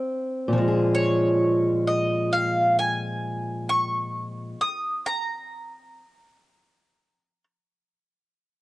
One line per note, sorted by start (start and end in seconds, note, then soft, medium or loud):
0.00 5.98 C4 medium
0.48 4.53 A#2 medium
0.53 4.57 F3 medium
0.58 4.62 G#3 medium
0.68 4.72 G#4 medium
0.95 1.83 C#5 medium
1.87 2.31 D#5 medium
2.33 2.76 F5 loud
2.79 3.67 G#5 medium
3.69 4.58 C#6 medium
4.61 5.05 D#6 medium
5.06 7.44 A#5 medium